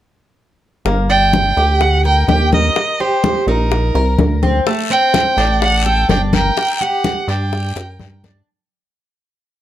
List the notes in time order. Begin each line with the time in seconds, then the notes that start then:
0.85 G1 A#3, high bongo, high conga
1.10 D4 G5, high conga
1.33 high bongo, high conga
1.57 D2 G4, high bongo, high conga
1.81 F#5, high bongo, high conga
2.04 A#4 G5, high bongo, high conga
2.28 D#2 G4 G5, high bongo, low bongo, high conga
2.52 A#4 D#5, high bongo, high conga
2.76 high bongo, high conga
3.00 G4 C5, high conga
3.24 high bongo, high conga
3.47 A#1 D#4 A#4, high bongo, high conga
3.71 high bongo, high conga
3.95 C2 A#4, high bongo, high conga
4.18 D2, high bongo, low bongo, high conga
4.43 C4, high bongo, high conga
4.66 A3, high bongo, high conga, long guiro
4.90 C4 G5, high conga
5.14 high bongo, high conga, short guiro
5.37 A1 D4, high bongo, high conga, short guiro
5.62 F#5, high bongo, high conga, long guiro
5.86 A4 G5, high bongo, high conga
6.09 G1 D4 G5, high bongo, low bongo, high conga, short guiro
6.33 A#4 G5, high bongo, high conga, short guiro
6.57 high bongo, high conga, long guiro
6.81 G4 F#5, high conga
7.04 high bongo, high conga, short guiro
7.28 G2 D4 G5, high bongo, high conga, short guiro
7.53 high bongo, high conga, long guiro
7.76 F#2 A#4, high bongo, high conga
7.99 G2, high conga, short guiro
8.24 D4, low bongo, high conga, short guiro